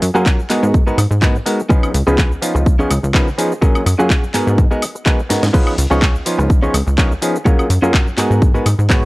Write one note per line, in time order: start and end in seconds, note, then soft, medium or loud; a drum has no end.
0.02 0.11 F#2 loud
0.02 open hi-hat loud
0.02 shaker medium
0.14 0.44 F#2 medium
0.14 0.28 F#3 medium
0.14 0.28 A#3 medium
0.14 0.28 C#4 medium
0.14 0.39 C#4 medium
0.14 0.28 F4 medium
0.14 0.39 F4 medium
0.14 0.39 F#4 medium
0.14 0.28 G#4 loud
0.14 0.39 A#4 loud
0.14 shaker soft
0.26 kick loud
0.26 clap loud
0.26 shaker soft
0.39 shaker soft
0.49 0.60 G#2 soft
0.49 0.84 G#3 medium
0.49 0.84 B3 medium
0.49 0.79 B3 medium
0.49 0.84 D#4 medium
0.49 0.84 F#4 medium
0.49 0.79 F#4 medium
0.49 0.84 G#4 medium
0.49 0.80 G#4 medium
0.49 0.80 A#4 medium
0.49 clap medium
0.49 open hi-hat loud
0.49 shaker medium
0.63 0.92 G#2 medium
0.63 shaker soft
0.74 kick loud
0.74 shaker soft
0.87 1.00 G#3 medium
0.87 0.98 B3 loud
0.87 1.00 B3 medium
0.87 1.01 D#4 medium
0.87 1.01 F#4 medium
0.87 0.98 F#4 medium
0.87 0.98 G#4 loud
0.87 1.01 A#4 medium
0.87 0.98 B4 loud
0.87 shaker soft
0.98 1.07 G#2 loud
0.98 open hi-hat loud
0.98 high woodblock medium
0.98 shaker medium
1.11 1.40 G#2 medium
1.11 muted clean electric guitar stroke soft
1.11 shaker soft
1.22 1.37 G#3 medium
1.22 1.35 B3 medium
1.22 1.37 B3 medium
1.22 1.37 D#4 medium
1.22 1.37 F#4 medium
1.22 1.35 F#4 medium
1.22 1.35 G#4 medium
1.22 1.35 A#4 medium
1.22 1.37 B4 loud
1.22 kick loud
1.22 clap loud
1.22 shaker soft
1.36 shaker soft
1.46 1.61 G#3 medium
1.46 1.61 B3 medium
1.46 1.61 D#4 medium
1.46 1.61 F#4 medium
1.46 1.61 A#4 loud
1.46 muted clean electric guitar stroke soft
1.46 open hi-hat loud
1.46 shaker medium
1.60 shaker soft
1.69 1.93 F3 loud
1.69 1.93 B3 medium
1.69 1.88 C#4 loud
1.69 1.93 C#4 medium
1.69 1.93 D#4 medium
1.69 1.88 F4 medium
1.69 1.89 G#4 loud
1.69 1.93 G#4 loud
1.69 1.89 B4 loud
1.69 kick loud
1.69 shaker soft
1.83 high woodblock medium
1.83 shaker soft
1.94 2.03 C#2 loud
1.94 open hi-hat loud
1.94 shaker medium
2.07 2.36 C#2 medium
2.07 2.20 F3 medium
2.07 2.20 B3 medium
2.07 2.21 C#4 medium
2.07 2.31 C#4 medium
2.07 2.21 D#4 medium
2.07 2.31 F4 medium
2.07 2.31 G#4 medium
2.07 2.21 G#4 loud
2.07 2.31 B4 loud
2.07 shaker soft
2.18 kick loud
2.18 clap loud
2.18 shaker soft
2.32 shaker soft
2.42 2.76 F3 medium
2.42 2.76 B3 medium
2.42 2.76 C#4 medium
2.42 2.76 D#4 medium
2.42 2.76 F4 medium
2.42 open hi-hat loud
2.42 shaker medium
2.55 2.84 C#2 medium
2.55 muted clean electric guitar stroke medium
2.55 shaker soft
2.66 muted clean electric guitar stroke soft
2.66 kick loud
2.66 shaker soft
2.79 2.92 F3 medium
2.79 2.92 B3 medium
2.79 2.90 C#4 loud
2.79 2.93 C#4 medium
2.79 2.93 D#4 medium
2.79 2.90 F4 loud
2.79 2.91 G#4 loud
2.79 2.93 G#4 medium
2.79 2.91 C#5 loud
2.79 shaker soft
2.91 2.99 C#2 loud
2.91 open hi-hat loud
2.91 high woodblock medium
2.91 shaker medium
3.03 3.32 C#2 medium
3.03 muted clean electric guitar stroke soft
3.03 shaker soft
3.14 3.29 F3 medium
3.14 3.29 B3 medium
3.14 3.27 C#4 medium
3.14 3.29 C#4 medium
3.14 3.29 D#4 medium
3.14 3.27 F4 medium
3.14 3.27 G#4 medium
3.14 3.29 A#4 loud
3.14 3.27 B4 loud
3.14 kick loud
3.14 clap loud
3.14 shaker soft
3.28 shaker soft
3.38 3.53 F3 medium
3.38 3.53 B3 medium
3.38 3.53 C#4 medium
3.38 3.53 D#4 medium
3.38 3.53 G#4 loud
3.38 muted clean electric guitar stroke soft
3.38 open hi-hat loud
3.38 shaker medium
3.52 shaker soft
3.61 3.85 F#3 loud
3.61 3.85 A#3 medium
3.61 3.81 C#4 loud
3.61 3.85 C#4 medium
3.61 3.85 F4 medium
3.61 3.81 F4 medium
3.61 3.81 F#4 loud
3.61 3.85 G#4 loud
3.61 3.81 A#4 loud
3.61 kick loud
3.61 shaker soft
3.75 high woodblock medium
3.75 shaker soft
3.86 3.95 F#2 loud
3.86 open hi-hat loud
3.86 high woodblock medium
3.86 shaker medium
3.98 4.28 F#2 medium
3.98 4.12 F#3 medium
3.98 4.12 A#3 medium
3.98 4.12 C#4 medium
3.98 4.23 C#4 medium
3.98 4.13 F4 medium
3.98 4.23 F4 medium
3.98 4.23 F#4 medium
3.98 4.13 G#4 medium
3.98 4.23 G#4 loud
3.98 shaker soft
4.10 kick loud
4.10 clap loud
4.10 shaker soft
4.24 shaker soft
4.34 4.45 G#2 soft
4.34 4.68 G#3 medium
4.34 4.68 B3 medium
4.34 4.63 B3 medium
4.34 4.68 D#4 medium
4.34 4.68 F#4 medium
4.34 4.63 F#4 medium
4.34 4.68 G#4 medium
4.34 4.64 G#4 medium
4.34 4.64 A#4 medium
4.34 clap medium
4.34 open hi-hat loud
4.34 shaker medium
4.47 4.58 G#2 medium
4.47 shaker soft
4.58 4.67 G#2 medium
4.58 kick loud
4.58 shaker soft
4.71 4.84 G#3 medium
4.71 4.84 B3 medium
4.71 4.82 B3 loud
4.71 4.84 D#4 medium
4.71 4.84 F#4 medium
4.71 4.82 F#4 medium
4.71 4.82 G#4 loud
4.71 4.85 A#4 medium
4.71 4.82 A#4 loud
4.71 shaker soft
4.82 open hi-hat loud
4.82 high woodblock medium
4.82 shaker medium
4.95 muted clean electric guitar stroke soft
4.95 shaker soft
5.05 5.21 G#3 medium
5.05 5.21 B3 medium
5.05 5.19 B3 medium
5.05 5.21 D#4 medium
5.05 5.21 F#4 medium
5.05 5.19 F#4 medium
5.05 5.19 G#4 medium
5.05 5.19 A#4 medium
5.05 5.21 B4 loud
5.05 kick loud
5.05 clap loud
5.05 shaker soft
5.19 shaker soft
5.29 5.41 G#2 soft
5.29 5.45 G#3 medium
5.29 5.45 B3 medium
5.29 5.45 D#4 medium
5.29 5.45 F#4 medium
5.29 5.45 A#4 medium
5.29 muted clean electric guitar stroke soft
5.29 snare medium
5.29 open hi-hat loud
5.29 shaker medium
5.43 5.50 G#2 medium
5.43 snare loud
5.43 shaker soft
5.53 5.76 F3 loud
5.53 5.76 B3 medium
5.53 5.77 C#4 medium
5.53 5.73 C#4 loud
5.53 5.77 D#4 medium
5.53 5.73 F4 loud
5.53 5.77 G#4 loud
5.53 5.73 G#4 medium
5.53 5.73 B4 loud
5.53 kick loud
5.53 crash medium
5.53 shaker soft
5.67 high woodblock medium
5.67 shaker soft
5.78 5.87 C#2 loud
5.78 open hi-hat loud
5.78 shaker medium
5.90 6.20 C#2 medium
5.90 6.04 F3 medium
5.90 6.04 B3 medium
5.90 6.04 C#4 medium
5.90 6.15 C#4 medium
5.90 6.04 D#4 medium
5.90 6.15 F4 medium
5.90 6.15 G#4 medium
5.90 6.04 G#4 loud
5.90 6.15 C#5 loud
5.90 shaker soft
6.02 kick loud
6.02 clap loud
6.02 shaker soft
6.16 shaker soft
6.26 6.60 F3 medium
6.26 6.60 B3 medium
6.26 6.60 C#4 medium
6.26 6.60 D#4 medium
6.26 6.60 F4 medium
6.26 open hi-hat loud
6.26 shaker medium
6.39 6.68 C#2 medium
6.39 muted clean electric guitar stroke medium
6.39 shaker soft
6.50 muted clean electric guitar stroke soft
6.50 kick loud
6.50 shaker soft
6.62 6.76 F3 medium
6.62 6.76 B3 medium
6.62 6.74 C#4 loud
6.62 6.76 C#4 medium
6.62 6.76 D#4 medium
6.62 6.74 F4 medium
6.62 6.74 G#4 loud
6.62 6.77 G#4 medium
6.62 6.74 C#5 loud
6.62 shaker soft
6.74 6.83 C#2 loud
6.74 open hi-hat loud
6.74 high woodblock medium
6.74 shaker medium
6.87 7.16 C#2 medium
6.87 muted clean electric guitar stroke soft
6.87 shaker soft
6.98 7.13 F3 medium
6.98 7.13 B3 medium
6.98 7.11 C#4 medium
6.98 7.13 C#4 medium
6.98 7.13 D#4 medium
6.98 7.11 F4 medium
6.98 7.11 G#4 medium
6.98 7.13 A#4 loud
6.98 7.11 C#5 medium
6.98 kick loud
6.98 clap loud
6.98 shaker soft
7.12 shaker soft
7.22 7.37 F3 medium
7.22 7.37 B3 medium
7.22 7.37 C#4 medium
7.22 7.37 D#4 medium
7.22 7.37 G#4 loud
7.22 muted clean electric guitar stroke soft
7.22 open hi-hat loud
7.22 shaker medium
7.35 shaker soft
7.45 7.69 F#3 loud
7.45 7.69 A#3 medium
7.45 7.64 C#4 loud
7.45 7.69 C#4 medium
7.45 7.64 F4 medium
7.45 7.69 F4 medium
7.45 7.65 F#4 loud
7.45 7.69 G#4 loud
7.45 7.65 A#4 loud
7.45 kick loud
7.45 shaker soft
7.59 high woodblock medium
7.59 shaker soft
7.70 7.79 F#2 loud
7.70 open hi-hat loud
7.70 shaker medium
7.82 8.12 F#2 medium
7.82 7.96 F#3 medium
7.82 7.96 A#3 medium
7.82 8.07 C#4 medium
7.82 7.96 C#4 medium
7.82 7.96 F4 medium
7.82 8.07 F4 medium
7.82 8.07 F#4 medium
7.82 7.97 G#4 loud
7.82 8.07 A#4 medium
7.82 shaker soft
7.94 kick loud
7.94 clap loud
7.94 shaker soft
8.07 shaker soft
8.17 8.28 G#2 soft
8.17 8.52 G#3 medium
8.17 8.47 B3 medium
8.17 8.52 B3 medium
8.17 8.52 D#4 medium
8.17 8.47 F#4 medium
8.17 8.52 F#4 medium
8.17 8.47 G#4 medium
8.17 8.52 G#4 medium
8.17 8.47 A#4 medium
8.17 clap medium
8.17 open hi-hat loud
8.17 shaker medium
8.31 8.60 G#2 medium
8.31 shaker soft
8.42 kick loud
8.42 shaker soft
8.54 8.68 G#3 medium
8.54 8.68 B3 medium
8.54 8.66 B3 medium
8.54 8.68 D#4 medium
8.54 8.66 F#4 medium
8.54 8.68 F#4 medium
8.54 8.66 G#4 loud
8.54 8.68 A#4 medium
8.54 8.66 B4 loud
8.54 shaker soft
8.66 8.75 G#2 loud
8.66 open hi-hat loud
8.66 high woodblock medium
8.66 shaker medium
8.79 9.05 G#2 medium
8.79 muted clean electric guitar stroke soft
8.79 shaker soft
8.89 9.05 G#3 medium
8.89 9.03 B3 medium
8.89 9.05 B3 medium
8.89 9.05 D#4 medium
8.89 9.03 F#4 medium
8.89 9.05 F#4 medium
8.89 9.03 G#4 medium
8.89 9.05 B4 loud
8.89 9.03 C#5 loud
8.89 kick loud
8.89 clap loud
8.89 shaker soft